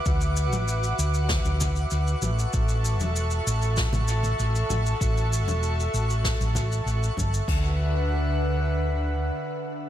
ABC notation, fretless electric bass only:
X:1
M:4/4
L:1/16
Q:1/4=97
K:D
V:1 name="Fretless electric bass" clef=bass
D,,3 A,,,3 D,,3 D,,3 D,, z A,,, z | A,,,3 E,,,3 A,,,3 A,,,3 A,,, z A,,, z | A,,,3 E,,,3 A,,,3 A,,,3 A,,, z G,,, z | D,,12 z4 |]